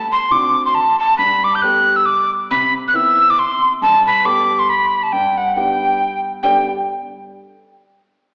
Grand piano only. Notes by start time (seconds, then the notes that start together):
Already playing: D2
0.30 C4 D4 F#4
1.19 G2
1.63 A3 B3 G4
2.51 C3
2.94 B3 C4 E4
3.82 G2
4.24 A3 B3 G4
5.13 G2
5.56 B3 D4 G4
6.43 G2 D3 B3 D4 G4 D5